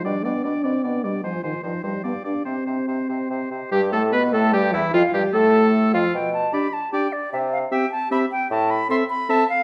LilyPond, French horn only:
\new Staff \with { instrumentName = "French horn" } { \time 3/4 \key c \minor \tempo 4 = 151 g8 b8 d'8 c'8 b8 g8 | f8 ees8 f8 g8 b8 d'8 | c'2~ c'8 r8 | \key e \phrygian g8 a8 b8 a8 g8 e8 |
f8 g8 a4. f8 | r4 d'4 d'4 | r4 c'4 c'4 | r4 c'4 c'4 | }